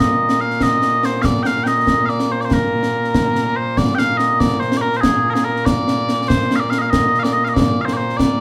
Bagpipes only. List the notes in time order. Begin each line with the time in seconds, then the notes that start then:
Already playing: A#2 A#3
0.00 D#5
0.41 F5
0.63 D#5
1.05 C5
1.22 D5 F5
1.43 F5 G5
1.64 D#5 G5
2.06 D5 F5
2.32 C5
2.41 D5
2.45 C5
2.53 A#4
3.56 C5
3.78 D5
3.95 F5 G5
4.18 D#5
4.40 D5
4.60 C5
4.77 D5
4.81 A#4
4.97 C5
5.01 G#4
5.30 G#4 A#4
5.45 A#4
5.65 D5
6.28 C5
6.56 F5
6.60 D5
6.70 F5
6.79 D#5 F5
6.87 D#5 F5
7.20 D5 F5
7.33 D#5
7.45 F5
7.49 D#5
7.54 D5
7.81 C5 F5
7.93 C5 D5
8.17 D5